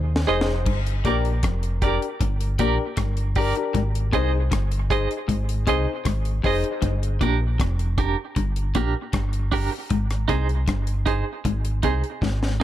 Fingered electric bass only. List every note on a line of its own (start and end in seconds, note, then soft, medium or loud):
0.00 0.25 D#2 loud
0.29 0.67 F1 medium
0.67 1.02 G1 loud
1.05 1.40 A#1 medium
1.44 1.98 F1 medium
2.21 2.56 G1 loud
2.60 2.77 A#1 medium
2.98 3.52 G1 medium
3.75 4.10 G#1 loud
4.14 4.49 C2 medium
4.52 5.06 G1 medium
5.29 5.64 G#1 medium
5.68 5.86 C2 medium
6.06 6.41 G#1 loud
6.45 6.62 F1 medium
6.83 7.18 G1 loud
7.21 7.56 A#1 medium
7.60 8.14 F1 loud
8.37 8.72 G1 medium
8.75 8.93 A#1 medium
9.14 9.68 G1 medium
9.91 10.26 G#1 medium
10.30 10.65 C2 medium
10.68 11.22 G1 medium
11.45 11.80 G#1 loud
11.84 12.02 C2 medium
12.22 12.63 G#1 medium